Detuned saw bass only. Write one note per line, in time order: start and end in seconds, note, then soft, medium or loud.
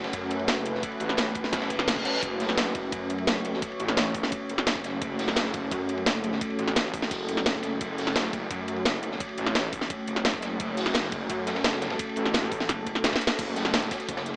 0.00 0.12 F#1 loud
0.13 0.47 F#2 loud
0.48 0.82 F#1 loud
1.00 1.51 A1 loud
1.53 2.04 F#1 loud
2.23 2.74 F#1 loud
2.75 2.91 F#1 loud
2.92 3.26 F#2 loud
3.27 3.61 F#1 loud
3.80 4.30 A1 loud
4.49 5.00 F#1 loud
5.02 5.53 F#1 loud
5.54 5.70 F#1 loud
5.72 6.05 F#2 loud
6.06 6.40 F#1 medium
6.59 7.10 A1 loud
7.11 7.79 F#1 loud
7.81 8.32 F#1 loud
8.33 8.49 F#1 loud
8.51 8.84 F#2 loud
8.85 9.19 F#1 medium
9.38 9.89 A1 loud
10.07 10.58 F#1 loud
10.60 11.11 F#1 medium
11.12 11.28 F#1 loud
11.30 11.63 F#2 loud
11.64 11.98 F#1 loud
12.17 12.68 A1 loud
12.69 13.20 F#1 loud
13.39 13.90 F#1 loud
14.09 14.36 F#1 loud